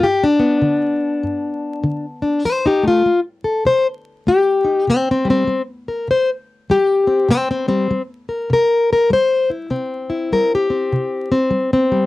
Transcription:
steel-string acoustic guitar
0.00 G2 G4
0.24 D4
0.40 B3
0.62 D3
1.23 G2
1.84 D3
2.22 D4
2.45 F3 D#4 C5
2.66 D#4 G4
2.83 A3
2.88 F4
3.06 A3
3.44 A4
3.65 C3 C5
4.27 A3 G4
4.64 D#4
4.87 C3 C4
5.11 C4
5.25 G3
5.30 C4
5.47 G3
5.88 A#4
6.08 C3 C5
6.70 G3 G4
7.07 C4
7.29 C3 C4
7.51 C4
7.68 G3 C4
7.91 G3
8.29 A#4
8.50 C3 A#4
8.93 A#4
9.10 G3 C5
9.50 E4
9.70 C3 C4
10.10 E4
10.32 G3 A#4
10.55 G4
10.70 C4
10.92 C3
11.32 C4
11.51 G3
11.73 C4
11.92 G3

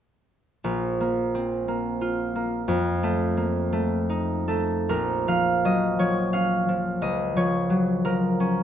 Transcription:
harp
0.64 A#1
1.01 A#3
1.35 C4
1.68 A#3
2.01 F4
2.36 A#3
2.68 F2
3.03 A3
3.37 A#3
3.73 A3
4.10 D#4
4.48 A3 A4
4.89 A#1 A#4
5.28 F3 F5
5.65 F#3 D#5
5.99 F3 C#5
6.33 C#4 F5
6.69 F3
7.02 C#2 D#5
7.36 F3 C#5
7.70 F#3
8.05 F3 A#4
8.40 C#4

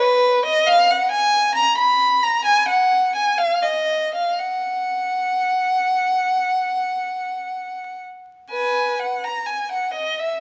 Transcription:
violin
0.00 B4
0.46 D#5
0.67 F5
0.91 F#5
1.12 G#5
1.55 A#5
1.77 B5
2.23 A#5
2.45 G#5
2.68 F#5
3.15 G#5
3.38 F5
3.62 D#5
4.14 F5
4.39 F#5
8.51 B4 G#5
8.99 F#5
9.24 A#5
9.46 G#5
9.72 F#5
9.93 D#5
10.19 E5

